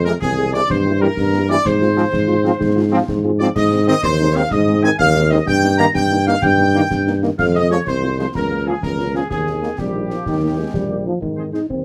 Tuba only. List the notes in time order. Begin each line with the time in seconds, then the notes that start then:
Already playing: F2
0.21 C2
0.69 G2
1.17 G2
1.65 G#2
2.13 G#2
2.60 G#2
3.08 G#2
3.56 G#2
4.03 D#2
4.52 G#2
5.00 D#2
5.47 G2
5.95 G2
6.42 G2
6.90 G2
7.39 F2
7.87 C2
8.34 C#2
8.82 C#2
9.30 D#2
9.78 A#1
10.26 D#2
10.73 A#1
11.21 G#2
11.70 D#2